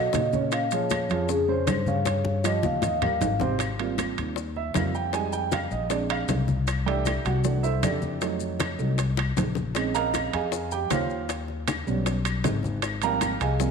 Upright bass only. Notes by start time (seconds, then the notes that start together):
Already playing: B2
0.14 A#2
1.10 F2
1.68 G2
2.63 D#2
3.21 G#1
4.18 D#2
4.75 F2
5.71 A#1
6.29 C2
7.25 C2
7.82 F2
8.79 C2
9.37 A#1
10.33 F2
10.90 D#2
11.87 B1
12.44 G#1
13.40 C2